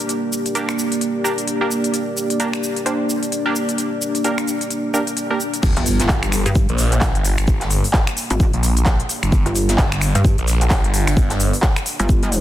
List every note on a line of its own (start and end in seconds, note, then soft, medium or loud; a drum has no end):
0.00 5.59 A#3 medium
0.00 5.59 D4 medium
0.00 5.59 G4 medium
0.00 5.59 D5 medium
0.00 cabasa soft
0.09 closed hi-hat medium
0.09 cabasa soft
0.33 cabasa medium
0.46 closed hi-hat soft
0.46 cabasa soft
0.55 1.22 A#3 medium
0.55 1.22 D4 medium
0.55 1.22 G4 medium
0.55 1.22 A#4 medium
0.55 closed hi-hat medium
0.55 cabasa soft
0.69 finger snap medium
0.69 cabasa soft
0.79 cabasa medium
0.92 closed hi-hat soft
0.92 cabasa soft
1.01 closed hi-hat medium
1.01 cabasa soft
1.24 1.32 A#3 medium
1.24 1.32 D4 medium
1.24 1.32 G4 medium
1.24 1.32 A#4 medium
1.24 cabasa medium
1.38 closed hi-hat soft
1.38 cabasa soft
1.48 closed hi-hat medium
1.48 cabasa soft
1.61 1.70 A#3 medium
1.61 1.70 D4 medium
1.61 1.70 G4 medium
1.61 1.70 A#4 medium
1.71 cabasa medium
1.84 closed hi-hat soft
1.84 cabasa soft
1.94 closed hi-hat medium
1.94 cabasa soft
2.17 cabasa medium
2.30 closed hi-hat soft
2.30 cabasa soft
2.40 2.48 A#3 medium
2.40 2.48 D4 medium
2.40 2.48 G4 medium
2.40 2.48 A#4 loud
2.40 closed hi-hat medium
2.40 cabasa soft
2.53 finger snap medium
2.53 cabasa soft
2.63 cabasa medium
2.76 closed hi-hat soft
2.76 cabasa soft
2.86 2.98 A#3 medium
2.86 2.98 D4 medium
2.86 2.98 G4 medium
2.86 2.98 C5 medium
2.86 closed hi-hat medium
2.86 cabasa soft
3.10 cabasa medium
3.23 closed hi-hat soft
3.23 cabasa soft
3.32 closed hi-hat medium
3.32 cabasa soft
3.46 3.54 A#3 medium
3.46 3.54 D4 medium
3.46 3.54 G4 medium
3.46 3.54 A#4 loud
3.56 cabasa medium
3.69 closed hi-hat soft
3.69 cabasa soft
3.78 closed hi-hat medium
3.78 cabasa soft
4.02 cabasa medium
4.15 closed hi-hat soft
4.15 cabasa soft
4.24 4.91 A#3 medium
4.24 4.91 D4 medium
4.24 4.91 G4 medium
4.24 4.91 A#4 medium
4.24 closed hi-hat medium
4.24 cabasa soft
4.38 finger snap medium
4.38 closed hi-hat soft
4.38 cabasa soft
4.47 closed hi-hat soft
4.47 cabasa medium
4.61 closed hi-hat soft
4.61 cabasa soft
4.70 closed hi-hat medium
4.70 cabasa soft
4.94 5.01 A#3 medium
4.94 5.01 D4 medium
4.94 5.01 G4 medium
4.94 5.01 A#4 medium
4.94 cabasa medium
5.07 closed hi-hat soft
5.07 cabasa soft
5.17 closed hi-hat medium
5.17 cabasa soft
5.30 5.39 A#3 medium
5.30 5.39 D4 medium
5.30 5.39 G4 medium
5.30 5.39 A#4 medium
5.40 cabasa medium
5.54 closed hi-hat soft
5.54 cabasa soft
5.63 5.74 G1 loud
5.63 12.41 A#3 medium
5.63 12.41 D4 medium
5.63 12.41 G4 medium
5.63 12.41 D5 medium
5.63 kick loud
5.63 crash loud
5.63 impact medium
5.63 cabasa soft
5.63 shaker medium
5.77 6.08 G1 loud
5.77 closed hi-hat medium
5.86 open hi-hat loud
5.86 cabasa medium
5.86 shaker medium
6.00 snare medium
6.00 closed hi-hat medium
6.00 cabasa soft
6.09 6.44 G1 medium
6.09 kick loud
6.09 snare loud
6.09 clap loud
6.09 cabasa soft
6.09 shaker medium
6.23 finger snap medium
6.23 closed hi-hat soft
6.23 cabasa soft
6.32 finger snap medium
6.32 open hi-hat loud
6.32 cabasa medium
6.32 shaker medium
6.46 6.67 G2 loud
6.46 closed hi-hat medium
6.46 cabasa soft
6.55 kick loud
6.55 cabasa soft
6.55 shaker medium
6.69 7.13 A#1 loud
6.69 closed hi-hat soft
6.78 snare soft
6.78 open hi-hat loud
6.78 cabasa medium
6.78 shaker medium
6.92 clap soft
6.92 closed hi-hat medium
6.92 cabasa soft
7.01 kick loud
7.01 snare loud
7.01 clap loud
7.01 open hi-hat medium
7.01 cabasa soft
7.01 shaker medium
7.15 7.36 G1 medium
7.15 closed hi-hat medium
7.25 open hi-hat loud
7.25 cabasa medium
7.25 shaker medium
7.38 7.46 G1 medium
7.38 finger snap medium
7.38 closed hi-hat soft
7.38 closed hi-hat medium
7.38 cabasa soft
7.47 7.82 G1 loud
7.47 kick loud
7.47 cabasa soft
7.47 shaker medium
7.61 snare soft
7.61 clap soft
7.61 closed hi-hat medium
7.70 open hi-hat loud
7.70 cabasa medium
7.70 shaker medium
7.84 open hi-hat medium
7.84 cabasa soft
7.93 kick loud
7.93 snare loud
7.93 clap loud
7.93 cabasa soft
7.93 shaker medium
8.07 finger snap medium
8.07 closed hi-hat soft
8.07 cabasa soft
8.17 open hi-hat loud
8.17 cabasa medium
8.17 shaker medium
8.30 8.51 G#1 loud
8.30 closed hi-hat medium
8.30 cabasa soft
8.40 kick loud
8.40 cabasa soft
8.40 shaker medium
8.53 8.97 A#1 loud
8.53 closed hi-hat soft
8.63 open hi-hat loud
8.63 cabasa medium
8.63 shaker medium
8.77 closed hi-hat medium
8.77 cabasa soft
8.86 kick loud
8.86 snare loud
8.86 clap loud
8.86 cabasa soft
8.86 shaker medium
9.00 closed hi-hat medium
9.09 open hi-hat loud
9.09 cabasa medium
9.09 shaker medium
9.23 9.31 G1 medium
9.23 finger snap medium
9.23 closed hi-hat medium
9.23 cabasa soft
9.32 9.44 G1 medium
9.32 kick loud
9.32 cabasa soft
9.32 shaker medium
9.46 9.77 G1 loud
9.46 closed hi-hat medium
9.55 open hi-hat loud
9.55 cabasa medium
9.55 shaker medium
9.68 snare medium
9.68 closed hi-hat medium
9.68 cabasa soft
9.78 10.13 G1 medium
9.78 kick loud
9.78 snare loud
9.78 clap loud
9.78 cabasa soft
9.78 shaker medium
9.92 finger snap medium
9.92 closed hi-hat soft
9.92 cabasa soft
10.01 finger snap medium
10.01 open hi-hat loud
10.01 cabasa medium
10.01 shaker medium
10.15 10.36 G2 loud
10.15 closed hi-hat medium
10.15 cabasa soft
10.25 kick loud
10.25 cabasa soft
10.25 shaker medium
10.38 10.82 A#1 loud
10.38 closed hi-hat soft
10.47 snare soft
10.47 open hi-hat loud
10.47 cabasa medium
10.47 shaker medium
10.61 clap soft
10.61 closed hi-hat medium
10.61 cabasa soft
10.70 kick loud
10.70 snare loud
10.70 clap loud
10.70 open hi-hat medium
10.70 cabasa soft
10.70 shaker medium
10.84 11.05 G1 medium
10.84 closed hi-hat medium
10.94 open hi-hat loud
10.94 cabasa medium
10.94 shaker medium
11.07 11.15 G1 loud
11.07 finger snap medium
11.07 closed hi-hat medium
11.07 closed hi-hat soft
11.07 cabasa soft
11.17 11.51 G1 loud
11.17 kick loud
11.17 cabasa soft
11.17 shaker medium
11.30 snare soft
11.30 clap soft
11.30 closed hi-hat soft
11.30 cabasa soft
11.40 open hi-hat loud
11.40 cabasa medium
11.40 shaker medium
11.53 open hi-hat medium
11.53 cabasa soft
11.62 kick loud
11.62 snare loud
11.62 clap loud
11.62 cabasa soft
11.62 shaker medium
11.76 finger snap medium
11.76 closed hi-hat soft
11.76 cabasa soft
11.86 open hi-hat loud
11.86 cabasa medium
11.86 shaker medium
11.99 12.41 G1 loud
11.99 closed hi-hat medium
11.99 cabasa soft
12.09 kick loud
12.09 cabasa soft
12.09 shaker medium
12.23 closed hi-hat soft
12.23 cabasa soft
12.32 open hi-hat loud
12.32 cabasa medium
12.32 shaker medium